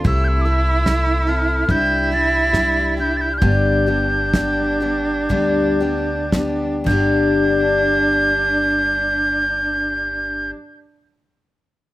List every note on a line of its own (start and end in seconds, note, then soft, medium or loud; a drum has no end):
0.04 1.65 C2 loud
0.04 0.45 C3 medium
0.04 0.45 A3 medium
0.04 0.46 C4 medium
0.04 1.69 E4 medium
0.04 0.45 E4 medium
0.04 0.44 A4 medium
0.04 0.25 E6 medium
0.04 kick medium
0.24 0.42 E6 medium
0.24 0.29 G6 medium
0.41 0.86 A4 soft
0.41 0.46 D6 medium
0.41 1.30 E6 medium
0.46 0.85 C4 soft
0.46 0.86 E4 soft
0.86 1.27 A3 medium
0.86 1.28 C4 medium
0.86 1.27 E4 medium
0.86 1.26 A4 medium
0.86 kick medium
0.86 snare medium
1.27 1.70 C4 soft
1.27 1.69 E4 soft
1.27 1.69 A4 soft
1.27 1.73 F6 medium
1.69 3.38 C2 medium
1.69 2.11 C3 medium
1.69 2.12 G3 medium
1.69 2.12 D4 medium
1.69 3.38 E4 medium
1.69 2.11 E4 medium
1.69 2.10 G4 medium
1.69 2.12 G6 medium
1.69 kick medium
2.11 2.54 D4 soft
2.11 2.54 E4 soft
2.11 2.54 G4 soft
2.11 2.94 A6 medium
2.53 2.98 G3 medium
2.53 2.98 D4 medium
2.53 2.97 E4 medium
2.53 2.96 G4 medium
2.53 kick medium
2.53 snare medium
2.97 3.41 D4 soft
2.97 3.42 E4 soft
2.97 3.41 G4 soft
2.97 3.18 G6 medium
3.17 3.22 A6 medium
3.21 3.35 G6 medium
3.34 3.39 F6 medium
3.38 5.26 G1 loud
3.38 3.87 G2 medium
3.38 3.87 D3 medium
3.38 6.82 D4 medium
3.38 6.30 G6 medium
3.38 kick medium
3.42 3.87 G3 medium
3.42 3.86 B3 medium
3.42 3.86 D4 medium
3.42 3.85 G4 medium
3.86 4.32 G3 soft
3.86 4.33 B3 soft
3.86 4.33 D4 soft
3.86 4.33 G4 soft
4.33 4.81 G3 medium
4.33 4.81 B3 medium
4.33 4.81 D4 medium
4.33 4.79 G4 medium
4.33 kick medium
4.33 snare medium
4.80 5.29 G3 soft
4.80 5.30 B3 soft
4.80 5.29 D4 medium
4.80 5.30 G4 soft
5.29 6.83 D2 medium
5.29 5.80 G2 medium
5.29 5.80 D3 medium
5.29 5.80 G3 medium
5.29 5.81 B3 medium
5.29 5.81 D4 medium
5.29 5.79 G4 medium
5.29 kick medium
5.80 6.32 G3 soft
5.80 6.32 B3 soft
5.80 6.33 D4 medium
5.80 6.32 G4 medium
6.32 6.87 G3 medium
6.32 6.87 B3 medium
6.32 6.87 D4 medium
6.32 6.88 G4 medium
6.32 kick medium
6.32 snare medium
6.84 10.50 G1 medium
6.84 10.52 G2 medium
6.84 10.54 D3 medium
6.84 10.56 G3 medium
6.84 10.49 D4 medium
6.84 10.51 G6 medium
6.84 kick medium
6.84 crash medium
6.89 10.57 B3 medium
6.89 10.59 D4 medium
6.89 10.60 G4 medium